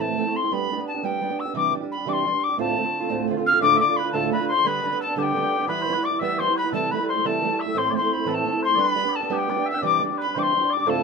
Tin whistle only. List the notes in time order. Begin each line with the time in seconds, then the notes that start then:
0.01 A5
0.36 C6
0.53 B5
0.87 A5
1.05 G5
1.40 E6
1.56 D6
1.92 B5
2.09 C6 D6
2.44 D6
2.60 A5
3.46 F6
3.62 D6
3.80 D6
3.97 B5
4.12 A5
4.32 B5
4.48 C6
4.66 B5
5.02 A5
5.18 A5
5.23 G5
5.68 B5
6.05 D6
6.22 E6
6.40 C6
6.57 B5
6.74 A5
6.92 B5
7.09 C6
7.26 A5
7.61 E6
7.78 C6
7.97 C6
8.13 B5
8.30 B5
8.34 A5
8.64 C6
8.80 B5
9.16 A5
9.33 A5
9.38 G5
9.70 E6
9.85 D6
10.21 B5
10.39 D6
10.43 C6
10.73 D6
10.90 A5